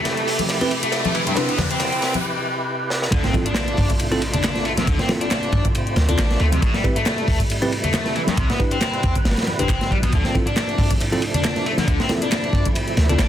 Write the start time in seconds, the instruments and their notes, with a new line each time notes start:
Already playing: tonewheel organ C3 A3 E4 G4, overdriven electric guitar A3, riser
0.05 snare, closed hi-hat, ride
0.17 closed hi-hat
0.27 808-style bass D2, open hi-hat
0.39 closed hi-hat, high conga
0.49 snare, closed hi-hat, ride
0.61 tine electric piano C4 E4 G4 B4, closed hi-hat
0.71 ride
0.83 overdriven electric guitar A3, closed hi-hat
0.92 snare, closed hi-hat, ride
1.05 closed hi-hat, high conga
1.15 overdriven electric guitar E3, ride
1.27 overdriven electric guitar G2, closed hi-hat
1.36 overdriven electric guitar C3, tine electric piano D4 E4 G4 B4, tonewheel organ B4, snare, closed hi-hat, ride
1.49 overdriven electric guitar B3, closed hi-hat
1.58 snare, ride, high conga, low conga
1.71 overdriven electric guitar C4, closed hi-hat, ride
1.80 snare, closed hi-hat, ride
1.92 closed hi-hat, ride
2.02 808-style bass E2, snare, ride
2.14 closed hi-hat, high conga
2.90 snare
3.02 snare
3.12 808-style bass D2, tonewheel organ C3 A3 D4 F4, overdriven electric guitar D3, kick, closed hi-hat, crash, ride, impact
3.24 overdriven electric guitar C4, snare, closed hi-hat
3.33 tine electric piano C4 E4 F4 A4, kick, ride, muted conga
3.46 overdriven electric guitar D4, closed hi-hat
3.54 snare, clap, closed hi-hat, ride
3.68 closed hi-hat
3.77 808-style bass G2, kick, open hi-hat
3.90 kick, closed hi-hat
3.99 closed hi-hat, ride
4.12 tine electric piano C4 E4 F4 A4, closed hi-hat, muted conga
4.22 ride
4.34 overdriven electric guitar D4, closed hi-hat, low conga
4.44 snare, clap, closed hi-hat, ride
4.55 snare, closed hi-hat
4.65 overdriven electric guitar A3, ride
4.77 overdriven electric guitar C3, snare, closed hi-hat, high conga
4.87 808-style bass D2, overdriven electric guitar D3, tonewheel organ C4, kick, closed hi-hat, ride
4.99 overdriven electric guitar C4, snare, closed hi-hat
5.09 tine electric piano C4 E4 F4 A4, snare, ride, muted conga
5.21 overdriven electric guitar D4, closed hi-hat
5.31 snare, clap, closed hi-hat, ride
5.43 closed hi-hat, ride
5.52 808-style bass G2, kick, ride, muted conga
5.65 kick, closed hi-hat
5.75 closed hi-hat, ride
5.87 closed hi-hat
5.96 808-style bass D2, snare, ride, muted conga
6.08 tine electric piano C4 E4 F4 A4, overdriven electric guitar D4, closed hi-hat, low conga
6.18 808-style bass A1, snare, clap, closed hi-hat, ride
6.31 snare, closed hi-hat
6.40 808-style bass D2, overdriven electric guitar A3, ride
6.52 overdriven electric guitar C3, closed hi-hat, ride, high conga
6.62 808-style bass A1, overdriven electric guitar A2, tonewheel organ G3 A3 E4, kick, closed hi-hat, ride
6.74 overdriven electric guitar G3, snare, closed hi-hat
6.84 tine electric piano C4 E4 G4 B4, kick, ride, muted conga
6.96 overdriven electric guitar A3, closed hi-hat
7.06 snare, clap, closed hi-hat, ride
7.18 closed hi-hat
7.28 808-style bass D2, kick, open hi-hat
7.39 kick, closed hi-hat
7.50 closed hi-hat, ride
7.62 tine electric piano C4 E4 G4 B4, closed hi-hat, muted conga
7.72 ride
7.84 overdriven electric guitar A3, closed hi-hat, low conga
7.94 snare, clap, closed hi-hat, ride
8.06 snare, closed hi-hat
8.15 overdriven electric guitar E3, ride
8.27 overdriven electric guitar G2, snare, closed hi-hat, high conga
8.37 808-style bass C2, overdriven electric guitar C3, tonewheel organ C3 B4, kick, closed hi-hat, ride
8.50 overdriven electric guitar B3, snare, closed hi-hat
8.59 tine electric piano D4 E4 G4 B4, kick, ride, muted conga
8.71 overdriven electric guitar C4, closed hi-hat, ride
8.81 snare, clap, closed hi-hat, ride
8.94 closed hi-hat, ride
9.03 808-style bass E2, kick, ride, muted conga
9.15 kick, closed hi-hat
9.25 808-style bass G1, snare, closed hi-hat, ride
9.31 snare, ride
9.37 snare, closed hi-hat, ride
9.42 snare, ride
9.47 snare, ride, muted conga
9.59 808-style bass G1, overdriven electric guitar C4, tine electric piano D4 E4 G4 B4, closed hi-hat, low conga
9.69 808-style bass G1, kick, clap, closed hi-hat, ride
9.81 snare, closed hi-hat, high conga
9.91 overdriven electric guitar G3, kick, ride
10.03 overdriven electric guitar B2, kick, closed hi-hat, ride, high conga
10.12 808-style bass D2, overdriven electric guitar D3, tonewheel organ F3 A3 D4, kick, closed hi-hat, ride
10.25 overdriven electric guitar C4, snare, closed hi-hat
10.35 tine electric piano C4 E4 F4 A4, kick, ride, muted conga
10.47 overdriven electric guitar D4, closed hi-hat
10.56 snare, clap, closed hi-hat, ride
10.69 closed hi-hat
10.78 808-style bass G2, kick, open hi-hat
10.91 kick, closed hi-hat
11.01 closed hi-hat, ride
11.12 tine electric piano C4 E4 F4 A4, closed hi-hat, muted conga
11.22 ride
11.34 overdriven electric guitar D4, closed hi-hat, low conga
11.44 snare, clap, closed hi-hat, ride
11.56 snare, closed hi-hat
11.66 overdriven electric guitar A3, ride
11.78 overdriven electric guitar D3, snare, closed hi-hat, high conga
11.88 808-style bass D2, overdriven electric guitar D3, tonewheel organ E4, kick, closed hi-hat, ride
12.00 overdriven electric guitar C4, snare, closed hi-hat
12.09 tine electric piano C4 E4 F4 A4, snare, ride, muted conga
12.22 overdriven electric guitar D4, closed hi-hat
12.32 snare, clap, closed hi-hat, ride
12.44 closed hi-hat, ride
12.53 808-style bass G2, kick, ride, muted conga
12.66 kick, closed hi-hat
12.75 closed hi-hat, ride
12.88 closed hi-hat
12.97 808-style bass D2, snare, ride, muted conga
13.09 tine electric piano C4 E4 F4 A4, overdriven electric guitar D4, closed hi-hat, low conga
13.19 808-style bass A1, snare, clap, closed hi-hat, ride